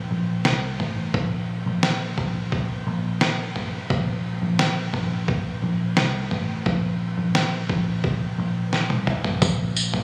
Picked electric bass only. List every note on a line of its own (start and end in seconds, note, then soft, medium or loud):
0.11 0.44 A#1 medium
0.45 0.78 C2 medium
0.80 1.13 A1 medium
1.14 1.63 A#1 medium
1.66 2.15 A#1 medium
2.18 2.83 A#1 medium
2.87 3.86 A#1 medium
3.90 4.39 A#1 medium
4.42 4.91 A#1 medium
4.93 5.59 A#1 medium
5.62 5.95 A#1 medium
5.97 6.30 C2 medium
6.31 6.64 A1 medium
6.66 7.15 A#1 medium
7.17 7.67 A#1 medium
7.69 8.35 A#1 medium
8.38 9.38 A#1 medium
9.42 10.04 A#1 medium